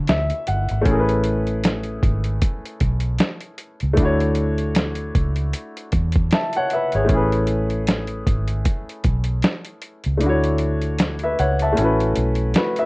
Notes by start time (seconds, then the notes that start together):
Already playing: A3 D4 E4 F#4 C#5
0.07 D2 E5, snare, closed hi-hat
0.30 closed hi-hat
0.47 G1 F#5, closed hi-hat
0.69 G#1, closed hi-hat
0.81 A3 C#4, closed hi-hat
0.86 A1 E4, kick
0.90 G#4 A#4
0.99 B4
1.09 closed hi-hat
1.24 closed hi-hat
1.47 closed hi-hat
1.64 snare, closed hi-hat
1.84 closed hi-hat
2.03 G#1, kick, closed hi-hat
2.24 closed hi-hat
2.42 kick, closed hi-hat
2.65 closed hi-hat
2.80 B1, kick, closed hi-hat
3.00 closed hi-hat
3.19 snare, closed hi-hat
3.41 closed hi-hat
3.58 closed hi-hat
3.80 C#2, closed hi-hat
3.93 A3 D4, closed hi-hat
3.98 D2 E4, kick
4.02 F#4 C#5
4.21 closed hi-hat
4.35 closed hi-hat
4.58 closed hi-hat
4.75 snare, closed hi-hat
4.95 closed hi-hat
5.15 C#2, kick, closed hi-hat
5.36 closed hi-hat
5.53 closed hi-hat
5.77 closed hi-hat
5.92 E2, kick, closed hi-hat
6.12 kick, closed hi-hat
6.31 E5 A5, snare, closed hi-hat
6.53 F#5, closed hi-hat
6.57 C#5
6.70 B4 E5, closed hi-hat
6.92 G#1 G#4 C#5, closed hi-hat
7.05 A3 C#4
7.09 A1 E4, kick, closed hi-hat
7.13 G#4 B4
7.32 closed hi-hat
7.47 closed hi-hat
7.70 closed hi-hat
7.87 snare, closed hi-hat
8.07 closed hi-hat
8.27 G#1, kick, closed hi-hat
8.48 closed hi-hat
8.65 kick, closed hi-hat
8.89 closed hi-hat
9.04 B1, kick, closed hi-hat
9.24 closed hi-hat
9.42 snare, closed hi-hat
9.65 closed hi-hat
9.82 closed hi-hat
10.04 C#2, closed hi-hat
10.17 A3 D4, closed hi-hat
10.23 D2 E4 F#4
10.29 C#5
10.44 closed hi-hat
10.58 closed hi-hat
10.82 closed hi-hat
10.98 snare, closed hi-hat
11.19 closed hi-hat
11.23 B4 E5
11.39 C#2 C#5 F#5, closed hi-hat
11.59 E5 A5, closed hi-hat
11.72 A3 C#4
11.77 A1 E4 F#4, closed hi-hat
11.84 B4
12.00 closed hi-hat
12.16 B1, closed hi-hat
12.35 closed hi-hat
12.54 F#4 B4, snare, closed hi-hat
12.76 B4 E5, closed hi-hat